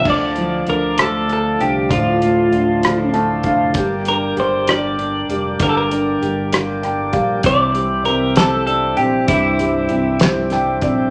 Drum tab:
CC |x-----|------|------|------|
HH |-xxxxx|xxxxxx|xxxxxx|xxxxxx|
SD |---r--|---rr-|---r--|---rr-|
BD |o-----|o----o|o-----|o----o|

CC |------|------|
HH |xxxxxx|xxxxxx|
SD |---o--|---oo-|
BD |o-----|o----o|